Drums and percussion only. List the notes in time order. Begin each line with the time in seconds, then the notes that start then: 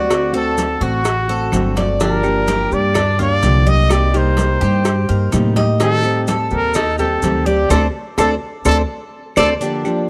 0.10 cowbell, claves, maracas
0.34 high conga, maracas
0.58 cowbell, high conga, maracas
0.82 maracas
1.05 cowbell, high conga, claves, maracas
1.29 high conga, maracas
1.52 cowbell, high conga, claves, maracas
1.76 cowbell, high conga, maracas
2.00 cowbell, high conga, maracas
2.23 high conga, claves, maracas
2.47 cowbell, high conga, maracas
2.72 high conga, maracas
2.94 cowbell, high conga, low conga, claves, maracas
3.20 high conga, low conga, maracas
3.43 cowbell, high conga, maracas
3.66 high conga, maracas
3.90 cowbell, high conga, claves, maracas
4.14 high conga, maracas
4.37 cowbell, high conga, maracas
4.62 maracas
4.85 cowbell, high conga, claves, maracas
5.09 high conga, maracas
5.32 cowbell, high conga, claves, maracas
5.56 cowbell, high conga, maracas
5.80 cowbell, high conga, maracas
6.03 high conga, claves, maracas
6.27 cowbell, high conga, maracas
6.50 high conga, maracas
6.74 cowbell, high conga, low conga, claves, maracas
6.98 high conga, low conga, maracas
7.22 cowbell, high conga, maracas
7.46 high conga, maracas
7.70 cowbell, low conga, claves, maracas
8.18 cowbell, low conga, claves, maracas
8.65 cowbell, low conga, claves, maracas
9.36 cowbell, low conga, claves, maracas
9.61 high conga, maracas
9.85 high conga, claves, maracas